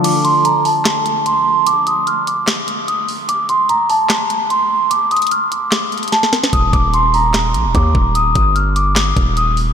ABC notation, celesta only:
X:1
M:4/4
L:1/8
Q:1/4=148
K:Eblyd
V:1 name="Celesta"
d' c' b a3 c'2 | d' e' f' d'3 e' z | d' c' b a3 c'2 | d' e' f' d'3 a z |
e' d' c' b3 d'2 | e' e' f' d'3 e' z |]